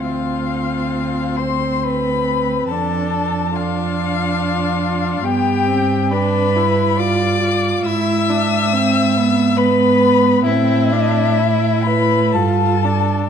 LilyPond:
<<
  \new Staff \with { instrumentName = "Violin" } { \time 3/4 \key d \dorian \tempo 4 = 69 f''4. c'''8 b''4 | a''4 f''2 | g''4 b''4 d'''4 | e'''2 b''4 |
e''4. b''8 a''4 | }
  \new Staff \with { instrumentName = "Violin" } { \time 3/4 \key d \dorian f'4. c''8 b'4 | a'4 f'2 | g'4 b'4 d''4 | e''2 b'4 |
e'4. b'8 a'4 | }
  \new Staff \with { instrumentName = "Viola" } { \time 3/4 \key d \dorian c'2. | d'4 d'2 | b8 c'8 d'8 e'8 f'8 f'8 | e'8 d'8 c'8 b8 b4 |
c'8 d'8 e'8 e'8 f'8 d'8 | }
  \new Staff \with { instrumentName = "Cello" } { \clef bass \time 3/4 \key d \dorian d,2. | f,2. | g,2. | gis,2. |
a,2 g,4 | }
>>